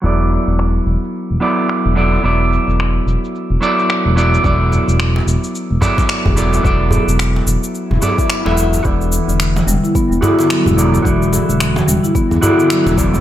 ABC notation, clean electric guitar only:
X:1
M:4/4
L:1/16
Q:"Swing 16ths" 1/4=109
K:Bm
V:1 name="Clean electric guitar"
[F,B,EAd]8- [F,B,EAd]2 [F,B,EAd]4 [F,B,EAd]2 | [F,B,EAd]8- [F,B,EAd]2 [F,B,EAd]4 [F,B,EAd]2 | [F,B,EAd]8- [F,B,EAd]2 [F,B,EAd]4 [F,B,EAd]2 | [F,B,EAd]8- [F,B,EAd]2 [F,B,EAd]3 [F,B,EAe]3 |
[B,EFAd]8- [B,EFAd]2 [B,EFAd]4 [F,B,EAd]2 | [B,EFAd]8- [B,EFAd]2 [B,EFAd]4 [F,B,EAd]2 |]